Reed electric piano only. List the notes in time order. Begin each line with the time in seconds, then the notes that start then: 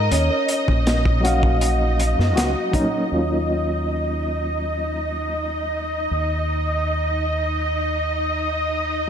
1.20 F#3 A#3
1.25 C#4 F5
2.71 F#3 A#3 C#4 D#4
3.07 F#3 A#3
3.12 C#4 F4